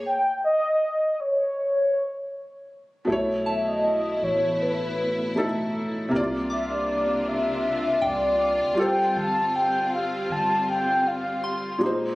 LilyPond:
<<
  \new Staff \with { instrumentName = "Synth bell" } { \time 4/4 \key g \mixolydian \tempo 4 = 79 r1 | r8 a''2 r4. | r8 d'''2 g''4. | r2. c'''4 | }
  \new Staff \with { instrumentName = "Soft synth lead" } { \time 4/4 \key g \mixolydian g''8 dis''4 des''2 r8 | r8 e''16 dis''8. cis''8 b'4. r8 | r8 e''16 d''8. e''4 d''4 g''8 | a''8 g''8 f''8 a''8 g''8 f''4 r8 | }
  \new Staff \with { instrumentName = "Felt piano" } { \time 4/4 \key g \mixolydian r1 | <b, a e' cis''>2. <b, a dis' e' a'>4 | <c bes e' f' d''>2.~ <c bes e' f' d''>8 <g f' a' c''>8~ | <g f' a' c''>2.~ <g f' a' c''>8 <bes, aes ees' c''>8 | }
  \new Staff \with { instrumentName = "String section" } { \time 4/4 \key g \mixolydian << { r1 | e'1 | f'1~ | f'2.~ f'8 ees'8 | } \\ { r1 | <a b>1 | <c bes d'>2.~ <c bes d'>8 <g c'>8~ | <g c'>2.~ <g c'>8 <aes bes>8 | } >> }
  \new Staff \with { instrumentName = "808-style bass" } { \clef bass \time 4/4 \key g \mixolydian r1 | b,,4. a,,2~ a,,8 | c,2~ c,8 c,8. d,16 r8 | g,,4. g,,2 r8 | }
>>